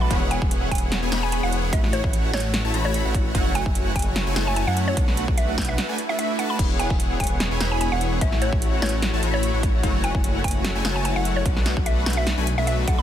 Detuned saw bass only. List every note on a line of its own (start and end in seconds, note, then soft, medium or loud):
0.11 0.40 E1 loud
0.42 0.70 E1 loud
0.71 1.00 E1 loud
1.03 1.10 E1 loud
1.12 1.41 E1 loud
1.43 1.71 E1 loud
1.73 2.02 A1 loud
2.04 2.32 A1 loud
2.33 2.63 A1 loud
2.65 2.72 A1 loud
2.74 3.03 A1 loud
3.05 3.33 A1 loud
3.35 3.64 F#1 loud
3.66 3.94 F#1 loud
3.96 4.25 F#1 loud
4.27 4.34 F#1 loud
4.36 4.65 F#1 loud
4.67 4.95 F#2 loud
4.97 5.26 B1 loud
5.28 5.56 B1 loud
5.58 5.78 B1 loud
6.59 6.88 E1 loud
6.90 7.18 E1 loud
7.20 7.49 E1 loud
7.51 7.59 E1 loud
7.61 7.90 E1 loud
7.92 8.20 E1 loud
8.21 8.50 A1 loud
8.53 8.80 A1 loud
8.82 9.11 A1 loud
9.13 9.21 A1 loud
9.23 9.52 A1 loud
9.54 9.82 A1 loud
9.83 10.12 F#1 loud
10.15 10.42 F#1 loud
10.44 10.73 F#1 loud
10.75 10.83 F#1 loud
10.85 11.14 F#1 loud
11.16 11.44 F#1 medium
11.46 11.75 B1 loud
11.77 12.05 B1 loud
12.06 12.36 B1 loud
12.38 12.56 B1 loud
12.58 12.86 B1 loud
12.88 13.02 B1 medium